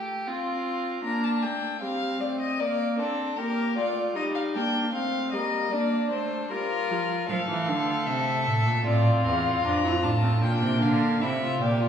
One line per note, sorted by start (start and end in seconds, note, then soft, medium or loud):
0.00 0.29 A3 medium
0.00 0.29 G4 medium
0.27 1.04 C4 medium
0.27 1.04 F4 medium
1.04 1.45 A#3 medium
1.04 1.81 D4 medium
1.04 1.25 A#5 medium
1.24 1.44 A5 medium
1.42 1.84 A3 medium
1.42 1.80 G5 medium
1.81 2.21 G3 medium
1.81 2.62 C4 medium
1.81 2.22 F5 medium
2.20 2.59 A3 medium
2.20 2.40 D5 medium
2.40 2.61 D#5 medium
2.60 3.01 A#3 medium
2.60 2.98 A#3 medium
2.60 2.98 D5 medium
2.99 3.38 C4 medium
2.99 3.39 D4 medium
2.99 3.40 A4 medium
3.38 3.78 A#3 medium
3.38 3.78 G4 medium
3.38 3.77 A#4 medium
3.77 4.16 A3 medium
3.77 4.17 F4 medium
3.77 4.15 D5 medium
4.16 4.57 G3 medium
4.16 4.57 D#4 medium
4.16 4.23 D#5 medium
4.35 4.43 F5 medium
4.55 4.93 A#3 medium
4.55 4.93 D4 medium
4.55 4.92 G5 medium
4.92 5.35 A3 medium
4.92 5.36 C4 medium
4.92 5.31 F5 medium
5.32 5.72 G3 medium
5.32 5.74 A#3 medium
5.32 5.73 D#5 medium
5.71 6.11 A#3 medium
5.71 6.52 D4 medium
5.71 6.10 D5 medium
6.10 6.50 A3 medium
6.10 6.49 C5 medium
6.51 6.92 G3 medium
6.51 7.29 F4 medium
6.51 7.28 A#4 medium
6.90 7.29 F3 medium
7.29 7.37 F3 medium
7.29 8.88 A3 medium
7.29 8.83 A4 medium
7.29 8.08 F5 medium
7.49 7.70 E3 medium
7.68 8.07 D3 medium
8.06 8.48 C3 medium
8.06 8.85 E5 medium
8.47 8.68 A2 medium
8.66 8.85 A#2 medium
8.85 9.24 A2 medium
8.85 9.64 C4 medium
8.85 10.39 F4 medium
8.85 9.24 D5 medium
9.25 9.63 E2 medium
9.25 9.66 F5 medium
9.64 10.05 F2 medium
9.64 9.83 D4 medium
9.64 10.05 A#5 medium
9.84 9.92 E4 medium
10.03 10.44 A2 medium
10.03 10.12 D4 medium
10.03 10.42 A5 medium
10.23 10.31 C4 medium
10.42 10.64 A#2 medium
10.42 11.24 A#3 medium
10.42 11.20 D4 medium
10.42 10.83 G5 medium
10.62 10.81 C3 medium
10.82 11.21 D3 medium
10.82 11.23 F5 medium
11.21 11.60 C3 medium
11.21 11.63 A3 medium
11.21 11.30 E4 medium
11.21 11.60 E5 medium
11.41 11.63 F4 medium
11.61 11.89 A#2 medium
11.61 11.89 A#3 medium
11.61 11.82 G4 medium
11.61 11.89 D5 medium
11.80 11.89 F4 medium